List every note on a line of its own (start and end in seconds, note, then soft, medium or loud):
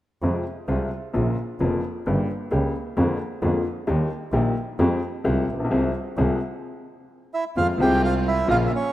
0.22 0.41 F2 medium
0.22 0.42 F2 medium
0.22 0.42 C3 soft
0.22 0.42 F3 medium
0.22 0.42 G#3 soft
0.22 0.42 F4 medium
0.68 0.87 C2 medium
0.68 0.88 C2 medium
0.68 0.87 C3 medium
0.68 0.87 F3 soft
0.68 0.88 G#3 soft
0.68 0.88 F4 medium
1.13 1.33 A#1 medium
1.13 1.34 A#1 medium
1.13 1.33 A#2 medium
1.13 1.33 C#3 soft
1.13 1.33 F3 soft
1.13 1.33 A#3 soft
1.13 1.33 F4 medium
1.60 1.79 F1 medium
1.60 1.80 F1 medium
1.60 1.80 F2 medium
1.60 1.79 C#3 soft
1.60 1.79 F3 soft
1.60 1.80 A#3 soft
1.60 1.80 F4 medium
2.06 2.25 G1 medium
2.06 2.25 G2 medium
2.06 2.25 C#3 medium
2.06 2.25 G3 soft
2.06 2.25 A#3 soft
2.06 2.25 G4 medium
2.51 2.70 C#2 medium
2.51 2.71 C#3 medium
2.51 2.70 G3 soft
2.51 2.70 A#3 soft
2.51 2.71 G4 medium
2.97 3.16 F2 medium
2.97 3.16 D3 medium
2.97 3.16 F3 medium
2.97 3.16 G#3 soft
2.97 3.16 A#3 medium
2.97 3.16 F4 medium
3.42 3.62 F2 medium
3.42 3.61 D3 medium
3.42 3.61 F3 medium
3.42 3.61 G#3 medium
3.42 3.62 A#3 medium
3.42 3.62 F4 medium
3.87 4.07 D#2 medium
3.87 4.07 D#3 medium
3.87 4.07 G3 soft
3.87 4.07 A#3 medium
3.87 4.07 G4 medium
4.32 4.52 A#1 medium
4.32 4.53 A#2 medium
4.32 4.53 D#3 medium
4.32 4.52 G3 medium
4.32 4.52 A#3 soft
4.32 4.53 G4 medium
4.79 4.99 F2 medium
4.79 4.99 F3 medium
4.79 4.99 G#3 soft
4.79 4.98 C4 medium
4.79 4.99 G4 medium
5.24 5.44 C2 medium
5.24 5.45 C2 medium
5.24 5.44 C3 medium
5.24 5.44 F3 medium
5.24 5.44 G#3 medium
5.24 5.44 C4 medium
5.24 5.44 G4 medium
5.49 5.71 A#1 soft
5.53 5.59 A1 soft
5.60 5.65 A#1 soft
5.64 5.71 B1 medium
5.70 5.90 C2 medium
5.70 5.91 C2 medium
5.70 5.90 C3 medium
5.70 5.90 F3 medium
5.70 5.90 G#3 medium
5.70 5.90 C4 medium
5.70 5.90 G#4 medium
6.17 6.37 C2 medium
6.17 6.37 C3 medium
6.17 6.37 F3 medium
6.17 6.37 G#3 medium
6.17 6.37 C4 medium
6.17 6.37 G#4 medium
7.34 7.44 E4 medium
7.34 7.44 E5 medium
7.56 7.76 F2 medium
7.56 7.76 F2 soft
7.56 7.76 F3 soft
7.56 7.76 G#3 soft
7.56 7.76 C4 soft
7.56 7.76 F4 soft
7.56 7.67 F4 medium
7.56 7.76 G#4 soft
7.56 7.67 F5 medium
7.78 8.45 C2 medium
7.78 8.45 C3 medium
7.78 8.44 F3 medium
7.78 8.44 G#3 medium
7.78 8.45 C4 medium
7.78 8.45 F4 medium
7.78 8.02 G4 medium
7.78 8.46 G#4 medium
7.78 8.02 G5 medium
8.04 8.14 F4 medium
8.04 8.14 F5 medium
8.28 8.48 E4 medium
8.28 8.48 E5 medium
8.47 8.67 A#1 medium
8.47 8.67 A#2 medium
8.47 8.67 C#3 medium
8.47 8.67 F3 medium
8.47 8.67 A#3 medium
8.47 8.67 C#4 medium
8.47 8.67 F4 medium
8.47 8.68 F4 medium
8.47 8.57 F4 medium
8.47 8.57 F5 medium
8.67 8.72 E5 medium
8.75 8.93 C#4 medium
8.75 8.93 C#5 medium